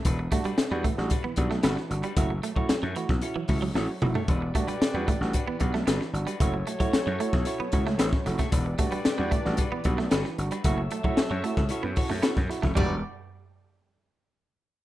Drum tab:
RD |----------------|----------------|----------------|----------------|
HH |x-xxx-x-x-x-x-xx|x-x-x-x-x-o-----|x-xxx-x-x-x-x-xx|x-xxx-x-x-x-x-xx|
SD |----o--o---ooo--|----o--o----o---|----o--o---ooo--|----o--o---ooooo|
T2 |----------------|--------------o-|----------------|----------------|
FT |----------------|---------------o|----------------|----------------|
BD |o-o---o-o-o-----|o--o---o--o-----|o-o---o-o-o-----|o--o---o--o--o-o|

RD |----------------|----------------|b---------------|
HH |x-xxx-x-x-x-x-xx|x-x-x-x-x-o-x-x-|----------------|
SD |----o--o---ooo--|----o--o---ooooo|----------------|
T2 |----------------|----------------|----------------|
FT |----------------|----------------|o---------------|
BD |o-o---o-o-o-----|o--o---o--o--o-o|o---------------|